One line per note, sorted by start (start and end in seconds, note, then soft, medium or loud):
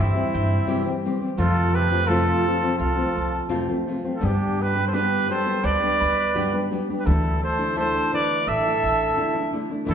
0.00 0.22 G2 medium
0.00 0.15 E3 medium
0.00 1.43 E3 medium
0.00 0.16 G3 medium
0.00 1.43 G3 medium
0.00 0.15 C4 medium
0.00 1.04 C4 medium
0.00 2.09 C4 medium
0.00 1.05 E4 medium
0.00 0.14 G4 medium
0.00 1.45 E5 medium
0.15 0.66 G3 soft
0.15 0.66 C4 soft
0.15 0.67 G4 soft
0.34 0.56 G2 loud
0.34 1.89 G5 medium
0.67 0.85 C3 medium
0.67 0.85 E3 medium
0.67 0.85 G3 medium
0.67 0.85 C4 medium
0.67 0.84 G4 medium
0.85 1.04 G3 soft
0.85 1.04 C4 medium
0.85 1.03 G4 soft
1.05 1.21 E3 medium
1.05 1.22 G3 medium
1.05 1.21 C4 medium
1.05 1.19 G4 medium
1.21 1.39 G3 soft
1.21 1.38 C4 soft
1.21 1.38 G4 soft
1.38 2.30 F2 loud
1.38 1.92 F2 medium
1.38 1.91 C3 medium
1.38 4.26 F3 medium
1.38 1.91 F3 medium
1.38 1.91 A3 medium
1.38 1.90 C4 medium
1.38 1.76 F4 medium
1.38 1.90 F4 medium
1.38 1.76 A4 medium
1.75 5.08 A3 medium
1.75 2.08 G4 medium
1.75 2.09 B4 medium
1.91 2.09 F3 soft
1.91 2.08 A3 soft
1.91 2.08 C4 soft
1.91 2.08 F4 soft
2.06 2.45 F2 medium
2.06 2.45 C3 medium
2.06 2.45 F3 medium
2.06 2.45 A3 medium
2.06 4.65 C4 medium
2.06 2.46 C4 medium
2.06 2.77 F4 medium
2.06 2.46 F4 medium
2.06 2.78 A4 medium
2.46 2.63 F3 medium
2.46 2.62 A3 soft
2.46 2.62 C4 medium
2.46 2.61 F4 medium
2.62 2.96 F3 soft
2.62 2.96 A3 soft
2.62 2.96 C4 soft
2.62 2.95 F4 soft
2.77 3.03 C2 medium
2.77 3.45 F4 medium
2.77 3.46 A4 medium
2.77 4.46 F5 medium
2.96 3.48 F3 soft
2.96 3.48 A3 soft
2.96 3.48 C4 soft
2.96 3.49 F4 soft
3.16 3.39 C2 medium
3.16 4.61 A5 medium
3.49 3.68 F2 medium
3.49 3.68 C3 medium
3.49 3.68 F3 medium
3.49 3.68 A3 medium
3.49 3.68 C4 medium
3.49 3.67 F4 medium
3.68 3.86 F3 soft
3.68 3.87 A3 soft
3.68 3.87 C4 soft
3.68 3.87 F4 soft
3.87 4.04 F3 soft
3.87 4.04 A3 medium
3.87 4.03 C4 medium
3.87 4.03 F4 medium
4.04 4.20 F3 soft
4.04 4.21 A3 soft
4.04 4.20 C4 soft
4.04 4.21 F4 soft
4.14 4.26 F4 soft
4.14 4.27 A4 medium
4.20 4.75 G2 medium
4.20 5.14 G2 medium
4.20 4.75 D3 medium
4.20 4.74 G3 medium
4.20 7.10 G3 medium
4.20 4.74 B3 medium
4.20 4.73 D4 medium
4.20 4.62 D4 medium
4.20 4.73 G4 medium
4.25 4.64 G4 medium
4.59 7.70 B3 medium
4.59 4.86 G4 medium
4.59 4.86 B4 medium
4.74 4.92 G3 soft
4.74 4.92 B3 soft
4.74 4.92 D4 soft
4.74 4.92 G4 soft
4.87 4.96 A4 soft
4.87 4.96 C5 medium
4.93 5.29 G2 medium
4.93 5.29 D3 medium
4.93 5.28 G3 medium
4.93 5.28 B3 medium
4.93 7.73 D4 medium
4.93 5.29 D4 medium
4.93 5.30 G4 medium
4.93 5.30 B4 medium
5.29 5.46 G3 soft
5.29 5.46 B3 medium
5.29 5.45 D4 medium
5.29 5.45 G4 medium
5.29 5.65 A4 medium
5.29 5.66 C5 medium
5.46 5.81 G3 soft
5.46 5.81 B3 soft
5.46 5.81 D4 soft
5.46 5.79 G4 soft
5.63 5.88 D2 medium
5.63 6.71 B4 medium
5.63 6.72 D5 medium
5.63 7.19 G5 medium
5.81 6.34 G3 soft
5.81 6.34 B3 soft
5.81 6.34 D4 soft
5.81 6.34 G4 soft
6.00 6.23 D2 medium
6.00 7.35 B5 medium
6.34 6.52 G2 medium
6.34 6.53 D3 medium
6.34 6.53 G3 medium
6.34 6.53 B3 medium
6.34 6.52 D4 medium
6.34 6.52 G4 medium
6.53 6.69 G3 soft
6.53 6.71 B3 soft
6.53 6.71 D4 soft
6.53 6.71 G4 medium
6.71 6.88 G3 soft
6.71 6.89 B3 medium
6.71 6.88 D4 medium
6.71 6.88 G4 medium
6.89 7.06 G3 soft
6.89 7.06 B3 soft
6.89 7.06 D4 soft
6.89 7.06 G4 soft
6.98 7.07 G4 soft
6.98 7.08 B4 medium
7.06 7.98 D2 loud
7.06 7.60 D3 medium
7.06 9.87 E3 medium
7.06 7.59 A3 medium
7.06 7.58 D4 medium
7.06 7.42 E4 medium
7.06 7.58 E4 medium
7.06 7.42 A4 medium
7.42 9.94 A3 medium
7.42 7.74 A4 medium
7.42 7.75 C5 medium
7.59 7.75 A3 soft
7.59 7.75 D4 soft
7.59 7.75 E4 soft
7.76 8.11 D3 medium
7.76 8.12 A3 medium
7.76 9.94 D4 medium
7.76 8.12 D4 medium
7.76 8.13 E4 medium
7.76 8.10 A4 medium
7.76 8.11 C5 medium
8.12 8.65 D3 soft
8.12 8.65 A3 medium
8.12 8.65 D4 soft
8.12 8.65 E4 medium
8.12 8.50 B4 medium
8.12 8.49 D5 medium
8.46 8.71 A1 medium
8.46 9.54 A4 medium
8.46 9.94 E5 medium
8.46 9.54 E5 medium
8.66 9.16 A3 soft
8.66 9.17 D4 soft
8.66 9.17 E4 soft
8.83 9.05 A1 medium
8.83 9.94 A5 medium
9.17 9.35 D3 medium
9.17 9.35 A3 medium
9.17 9.34 D4 medium
9.17 9.33 E4 medium
9.35 9.52 A3 soft
9.35 9.52 D4 soft
9.35 9.53 E4 medium
9.53 9.70 D3 medium
9.53 9.70 A3 medium
9.53 9.70 D4 medium
9.53 9.69 E4 medium
9.70 9.85 A3 soft
9.70 9.85 D4 medium
9.70 9.85 E4 soft
9.85 9.94 E2 medium
9.85 9.94 B2 medium
9.85 9.94 E3 medium
9.85 9.94 A3 medium
9.85 9.94 D4 medium
9.85 9.94 E4 medium
9.90 9.94 A4 medium